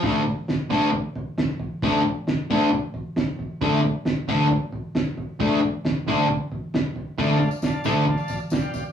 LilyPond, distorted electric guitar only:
\new Staff \with { instrumentName = "Distorted electric guitar" } { \time 4/4 \key d \minor \tempo 4 = 134 <d a d'>8 r4 <d a d'>8 r2 | <d a d'>8 r4 <d a d'>8 r2 | <d a d'>8 r4 <d a d'>8 r2 | <d a d'>8 r4 <d a d'>8 r2 |
<d a d'>8 r4 <d a d'>8 r2 | }